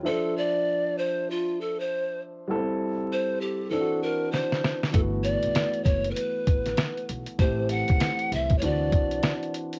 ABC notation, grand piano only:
X:1
M:4/4
L:1/8
Q:"Swing 16ths" 1/4=98
K:Dm
V:1 name="Grand piano"
[F,Dce]8 | [G,=B,CEA]4 [E,CDE^F]4 | [E,A,=B,^F]8 | [E,A,CG]4 [E,CD^F]4 |]